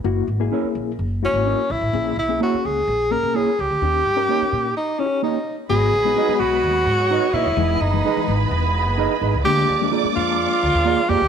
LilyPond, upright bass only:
\new Staff \with { instrumentName = "Upright bass" } { \clef bass \time 4/4 \key gis \minor \tempo 4 = 128 fis,,8 gis,,8 r8 ais,,8 fis,,8. gis,,8 r16 ais,,16 a,,16 | ais,,8 b,,8 r8 cis,8 ais,,8. b,,8 r16 cis,16 d,16 | dis,8 g,8 r8 ais,8 r2 | gis,,8 ais,,8 r8 b,,8 dis,8 gis,8. r16 ais,16 dis,,16 |
e,,8 fis,,8 r8 gis,,8 e,,8. fis,,8 r16 gis,,16 cis,16 | d,8 dis,8 r8 eis,8. r16 d,16 dis,8 r16 eis,16 d,16 | }